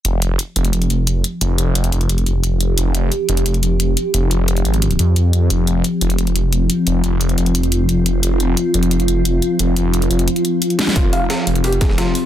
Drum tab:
HH |x-x-x-xxxxx-x-x-|x-x-xxxxxxx-x-x-|x-x-x-xxxxx-x-x-|x-x-xxxxxxx-x-x-|
SD |----------------|----------------|----------------|----------------|
BD |----------------|----------------|----------------|----------------|

HH |x-x-x-xxxxx-x-x-|x-x-xxxxxxx-x-x-|x-x-x-xxxxx-x-x-|x-x-xxxxxxx-xxx-|
SD |----------------|----------------|----------------|--------------oo|
BD |----------------|----------------|----------------|----------------|

HH |x-x-x-xxxxx-x-x-|
SD |----o-----ooo---|
BD |o---------o-----|